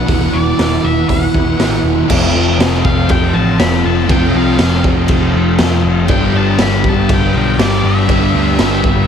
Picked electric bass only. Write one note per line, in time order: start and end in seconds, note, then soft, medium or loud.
0.09 0.26 E1 medium
0.33 0.51 E1 medium
0.59 0.77 E1 medium
0.84 1.02 E1 medium
1.09 1.27 E1 medium
1.34 1.52 E1 medium
1.59 1.77 A1 medium
1.83 2.01 E1 medium
2.10 2.32 F1 medium
2.34 2.57 F1 medium
2.59 2.81 F1 medium
2.85 3.07 F1 medium
3.09 3.32 F1 loud
3.34 3.57 A1 medium
3.59 3.82 F1 medium
3.85 4.07 F1 loud
4.09 4.32 F1 loud
4.34 4.57 C2 medium
4.59 4.82 F1 loud
4.84 5.06 F1 loud
5.09 5.32 F1 loud
5.34 5.56 F1 loud
5.59 5.82 F2 loud
5.84 6.09 F1 medium
6.09 6.31 G1 loud
6.33 6.56 G1 medium
6.59 6.82 G1 loud
6.84 7.06 G1 medium
7.09 7.31 G1 loud
7.34 7.56 B1 medium
7.58 7.81 G1 loud
7.84 8.06 G1 loud
8.09 8.31 G1 loud
8.33 8.56 D2 medium
8.59 8.81 G1 medium
8.83 9.06 G1 medium